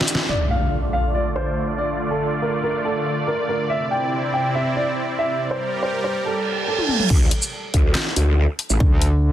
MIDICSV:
0, 0, Header, 1, 8, 480
1, 0, Start_track
1, 0, Key_signature, -1, "minor"
1, 0, Tempo, 425532
1, 329, Time_signature, 4, 2, 24, 8
1, 10516, End_track
2, 0, Start_track
2, 0, Title_t, "Grand piano"
2, 0, Program_c, 0, 0
2, 327, Note_on_c, 0, 74, 84
2, 482, Note_off_c, 0, 74, 0
2, 568, Note_on_c, 0, 77, 81
2, 874, Note_off_c, 0, 77, 0
2, 1050, Note_on_c, 0, 77, 81
2, 1203, Note_off_c, 0, 77, 0
2, 1290, Note_on_c, 0, 74, 80
2, 1444, Note_off_c, 0, 74, 0
2, 1530, Note_on_c, 0, 72, 84
2, 1835, Note_off_c, 0, 72, 0
2, 2011, Note_on_c, 0, 74, 85
2, 2238, Note_off_c, 0, 74, 0
2, 2374, Note_on_c, 0, 69, 86
2, 2600, Note_off_c, 0, 69, 0
2, 2728, Note_on_c, 0, 70, 78
2, 2883, Note_off_c, 0, 70, 0
2, 2970, Note_on_c, 0, 70, 83
2, 3124, Note_off_c, 0, 70, 0
2, 3210, Note_on_c, 0, 69, 86
2, 3515, Note_off_c, 0, 69, 0
2, 3690, Note_on_c, 0, 70, 79
2, 3844, Note_off_c, 0, 70, 0
2, 3931, Note_on_c, 0, 70, 82
2, 4084, Note_off_c, 0, 70, 0
2, 4170, Note_on_c, 0, 76, 90
2, 4324, Note_off_c, 0, 76, 0
2, 4409, Note_on_c, 0, 79, 83
2, 4714, Note_off_c, 0, 79, 0
2, 4890, Note_on_c, 0, 79, 83
2, 5044, Note_off_c, 0, 79, 0
2, 5129, Note_on_c, 0, 76, 78
2, 5283, Note_off_c, 0, 76, 0
2, 5370, Note_on_c, 0, 74, 87
2, 5675, Note_off_c, 0, 74, 0
2, 5850, Note_on_c, 0, 76, 88
2, 6077, Note_off_c, 0, 76, 0
2, 6212, Note_on_c, 0, 72, 88
2, 6439, Note_off_c, 0, 72, 0
2, 6570, Note_on_c, 0, 72, 83
2, 6724, Note_off_c, 0, 72, 0
2, 6812, Note_on_c, 0, 72, 82
2, 6965, Note_off_c, 0, 72, 0
2, 7052, Note_on_c, 0, 69, 86
2, 7355, Note_off_c, 0, 69, 0
2, 7532, Note_on_c, 0, 69, 81
2, 7685, Note_off_c, 0, 69, 0
2, 7771, Note_on_c, 0, 69, 85
2, 7924, Note_off_c, 0, 69, 0
2, 10516, End_track
3, 0, Start_track
3, 0, Title_t, "Supersaw synth"
3, 0, Program_c, 1, 81
3, 0, Note_on_c, 1, 62, 77
3, 0, Note_on_c, 1, 67, 73
3, 0, Note_on_c, 1, 76, 89
3, 284, Note_off_c, 1, 62, 0
3, 284, Note_off_c, 1, 67, 0
3, 309, Note_off_c, 1, 76, 0
3, 330, Note_on_c, 1, 50, 73
3, 331, Note_on_c, 1, 57, 66
3, 331, Note_on_c, 1, 65, 69
3, 331, Note_on_c, 1, 74, 81
3, 4131, Note_off_c, 1, 50, 0
3, 4131, Note_off_c, 1, 57, 0
3, 4132, Note_off_c, 1, 65, 0
3, 4168, Note_on_c, 1, 60, 67
3, 4169, Note_on_c, 1, 48, 77
3, 4169, Note_on_c, 1, 64, 69
3, 6070, Note_off_c, 1, 48, 0
3, 6070, Note_off_c, 1, 60, 0
3, 6070, Note_off_c, 1, 64, 0
3, 6089, Note_on_c, 1, 55, 73
3, 6089, Note_on_c, 1, 67, 67
3, 6089, Note_on_c, 1, 70, 69
3, 7485, Note_off_c, 1, 74, 0
3, 7515, Note_off_c, 1, 55, 0
3, 7515, Note_off_c, 1, 67, 0
3, 7515, Note_off_c, 1, 70, 0
3, 10516, End_track
4, 0, Start_track
4, 0, Title_t, "Wobble bass"
4, 0, Program_c, 2, 39
4, 8009, Note_on_c, 2, 38, 95
4, 8230, Note_off_c, 2, 38, 0
4, 8729, Note_on_c, 2, 38, 99
4, 8950, Note_off_c, 2, 38, 0
4, 9208, Note_on_c, 2, 38, 96
4, 9552, Note_off_c, 2, 38, 0
4, 9812, Note_on_c, 2, 33, 97
4, 9910, Note_off_c, 2, 33, 0
4, 10516, End_track
5, 0, Start_track
5, 0, Title_t, "Wobble bass"
5, 0, Program_c, 3, 39
5, 9929, Note_on_c, 3, 38, 94
5, 10516, Note_off_c, 3, 38, 0
5, 10516, End_track
6, 0, Start_track
6, 0, Title_t, "Impact"
6, 0, Program_c, 4, 103
6, 329, Note_on_c, 4, 60, 65
6, 2249, Note_off_c, 4, 60, 0
6, 10516, End_track
7, 0, Start_track
7, 0, Title_t, "Reverse cymbal"
7, 0, Program_c, 5, 119
7, 7049, Note_on_c, 5, 60, 71
7, 8009, Note_off_c, 5, 60, 0
7, 10516, End_track
8, 0, Start_track
8, 0, Title_t, "Drums"
8, 8, Note_on_c, 9, 38, 101
8, 89, Note_on_c, 9, 46, 97
8, 89, Note_on_c, 9, 82, 58
8, 121, Note_off_c, 9, 38, 0
8, 169, Note_on_c, 9, 38, 104
8, 202, Note_off_c, 9, 46, 0
8, 202, Note_off_c, 9, 82, 0
8, 281, Note_off_c, 9, 38, 0
8, 7653, Note_on_c, 9, 48, 48
8, 7766, Note_off_c, 9, 48, 0
8, 7769, Note_on_c, 9, 47, 71
8, 7882, Note_off_c, 9, 47, 0
8, 7892, Note_on_c, 9, 45, 72
8, 8005, Note_off_c, 9, 45, 0
8, 8009, Note_on_c, 9, 36, 121
8, 8009, Note_on_c, 9, 49, 102
8, 8121, Note_off_c, 9, 49, 0
8, 8122, Note_off_c, 9, 36, 0
8, 8248, Note_on_c, 9, 42, 85
8, 8361, Note_off_c, 9, 42, 0
8, 8372, Note_on_c, 9, 82, 57
8, 8485, Note_off_c, 9, 82, 0
8, 8728, Note_on_c, 9, 42, 83
8, 8729, Note_on_c, 9, 36, 63
8, 8841, Note_off_c, 9, 42, 0
8, 8842, Note_off_c, 9, 36, 0
8, 8968, Note_on_c, 9, 38, 118
8, 8968, Note_on_c, 9, 39, 93
8, 9081, Note_off_c, 9, 38, 0
8, 9081, Note_off_c, 9, 39, 0
8, 9209, Note_on_c, 9, 42, 83
8, 9322, Note_off_c, 9, 42, 0
8, 9689, Note_on_c, 9, 46, 90
8, 9802, Note_off_c, 9, 46, 0
8, 9812, Note_on_c, 9, 82, 50
8, 9925, Note_off_c, 9, 82, 0
8, 9929, Note_on_c, 9, 36, 125
8, 10042, Note_off_c, 9, 36, 0
8, 10169, Note_on_c, 9, 42, 80
8, 10282, Note_off_c, 9, 42, 0
8, 10516, End_track
0, 0, End_of_file